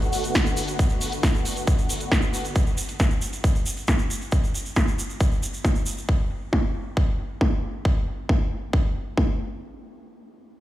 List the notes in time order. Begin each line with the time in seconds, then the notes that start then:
Already playing: D3 A3 B3 F#4
0.02 closed hi-hat, shaker
0.13 open hi-hat, shaker
0.24 closed hi-hat, shaker
0.35 kick, snare, closed hi-hat, shaker
0.46 closed hi-hat, shaker
0.57 open hi-hat, shaker
0.68 closed hi-hat, shaker
0.79 kick, closed hi-hat, shaker
0.89 closed hi-hat, shaker
1.01 open hi-hat, shaker
1.12 closed hi-hat, shaker
1.23 kick, snare, closed hi-hat, shaker
1.34 closed hi-hat, shaker
1.45 open hi-hat, shaker
1.56 closed hi-hat, shaker
1.67 kick, closed hi-hat, shaker
1.78 closed hi-hat, shaker
1.89 open hi-hat, shaker
2.00 closed hi-hat, shaker
2.12 kick, snare, closed hi-hat, shaker
2.22 closed hi-hat, shaker
2.34 open hi-hat, shaker
2.45 closed hi-hat, shaker
2.55 kick, closed hi-hat, shaker
2.67 closed hi-hat, shaker
2.78 closed hi-hat, shaker
2.89 closed hi-hat, shaker
3.00 kick, snare, shaker
3.11 closed hi-hat, shaker
3.22 closed hi-hat, shaker
3.33 closed hi-hat, shaker
3.44 kick, closed hi-hat, shaker
3.55 closed hi-hat, shaker
3.66 closed hi-hat, shaker
3.77 closed hi-hat, shaker
3.87 kick, snare, shaker
3.98 closed hi-hat, shaker
4.10 closed hi-hat, shaker
4.21 closed hi-hat, shaker
4.32 kick, closed hi-hat, shaker
4.43 closed hi-hat, shaker
4.54 closed hi-hat, shaker
4.65 closed hi-hat, shaker
4.76 kick, snare, shaker
4.88 closed hi-hat, shaker
4.99 closed hi-hat, shaker
5.09 closed hi-hat, shaker
5.20 kick, shaker
5.32 closed hi-hat, shaker
5.42 closed hi-hat, shaker
5.53 closed hi-hat, shaker
5.64 kick, snare, shaker
5.75 closed hi-hat, shaker
5.86 closed hi-hat, shaker
5.98 closed hi-hat, shaker
6.09 kick
6.20 closed hi-hat
6.31 closed hi-hat
6.42 closed hi-hat
6.53 kick, snare
6.64 closed hi-hat
6.75 closed hi-hat
6.86 closed hi-hat
6.97 kick
7.08 closed hi-hat
7.19 closed hi-hat
7.30 closed hi-hat
7.41 kick, snare
7.63 closed hi-hat
7.74 closed hi-hat
7.85 kick
8.07 closed hi-hat
8.18 closed hi-hat
8.29 kick, snare
8.51 closed hi-hat
8.62 closed hi-hat
8.73 kick, snare
8.95 closed hi-hat
9.07 closed hi-hat
9.17 kick, snare
9.40 closed hi-hat
9.51 closed hi-hat